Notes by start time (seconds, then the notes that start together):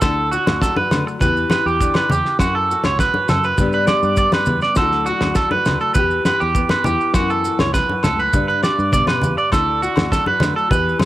0.02 D2 D3 E4 A4, kick, snare, low agogo, maracas
0.31 F#4, maracas
0.47 D2, snare, high conga, low agogo
0.62 F#3 A4, kick, snare, maracas
0.76 B4, high conga
0.91 D3 A3, snare, low conga, low agogo, maracas
1.07 muted clean electric guitar stroke, maracas
1.20 E2 E3 B3 E4 G4 B4, kick, snare, low conga, maracas
1.37 maracas
1.50 G4 B4, snare, high conga, low agogo, maracas
1.66 E2 G4, maracas
1.80 D3, kick, maracas
1.94 B4, snare, high conga, low agogo
2.10 E2 E3 G4, low conga, maracas
2.25 snare, maracas
2.39 F#2 E4 F#4, kick, snare, low agogo, maracas
2.55 A4
2.71 F#4, maracas
2.84 C#2 C#5, snare, high conga, low agogo
2.99 B4, kick, snare, maracas
3.14 high conga
3.28 F#2 A4, snare, low conga, low agogo, maracas
3.44 B4, maracas
3.58 G2 G3 B3 D4 G4, kick, low conga, maracas
3.73 B4, maracas
3.87 G4 D5, snare, high conga, low agogo, maracas
4.03 G2, maracas
4.17 G3 D5, kick, maracas
4.32 B4, snare, high conga, low agogo, maracas
4.46 E2 B3, low conga, maracas
4.61 D5, snare, maracas
4.76 D2 D3 F#3 A3 A4, kick, snare, low agogo, maracas
4.80 E4 F#4
4.92 snare
5.06 F#4, maracas
5.21 D2, snare, high conga, low agogo
5.35 F#3 A4, kick, snare, maracas
5.51 B4, high conga
5.65 D2 A3, snare, low conga, low agogo, maracas
5.81 A4, maracas
5.94 E2 E3 B4, kick, low conga, maracas
5.99 G4
6.11 maracas
6.25 G4 B4, snare, high conga, low agogo, maracas
6.40 E2 G4, maracas
6.55 B3, kick, maracas
6.69 B4, snare, high conga, low agogo, maracas
6.84 E2 E4 G4, low conga, maracas
7.01 maracas
7.14 F#2 E4 F#4, kick, snare, low agogo, maracas
7.30 A4, maracas
7.45 muted nylon-string guitar stroke, maracas
7.59 C#2 C#5, snare, high conga, low agogo
7.74 F#3 B4, kick, snare, maracas
7.89 high conga
8.03 C#2 A3 A4, snare, high conga, low conga, low agogo, maracas
8.19 B4, maracas
8.33 G2 D4, kick, low conga, maracas
8.48 B4, maracas
8.63 G4 D5, snare, low agogo, maracas
8.79 G2, maracas
8.92 B2 D5, kick, low conga, maracas
9.07 B4, snare, high conga, low agogo, maracas
9.22 E2 C#3, low conga, maracas
9.38 D5, maracas
9.52 D2 D3 E4 A4, kick, snare, low agogo, maracas
9.82 F#4, maracas
9.96 D2, snare, high conga, low agogo
10.11 F#3 A4, kick, snare, maracas
10.26 B4, high conga
10.40 D3 A3, snare, low conga, low agogo, maracas
10.56 A4, maracas
10.71 E2 E3 G4 B4, kick, low conga, maracas
10.89 maracas
10.99 muted clean electric guitar stroke, snare, high conga, low agogo, maracas